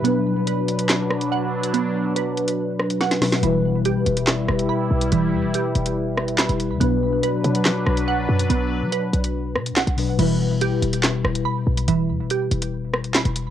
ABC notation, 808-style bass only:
X:1
M:4/4
L:1/16
Q:1/4=142
K:Em
V:1 name="808-style bass" clef=bass
z16 | z16 | E,,,4 B,,, E,,, E,,,4 E,,,2 z2 B,,,2 | E,,,2 E,, E,,, z2 E,,,4 F,,,3 E,,,2 E,, |
B,,,4 z2 B,,2 F,2 B,,,2 C,,2 F,,2 | B,,,3 F, z2 B,,,4 B,,3/2 B,,,3/2 B,,,2 A,,, | E,,,4 B,,, E,,, E,,,4 E,,,2 z2 B,,,2 | E,,,2 E,, E,,, z2 E,,,4 F,,,3 E,,,2 E,, |]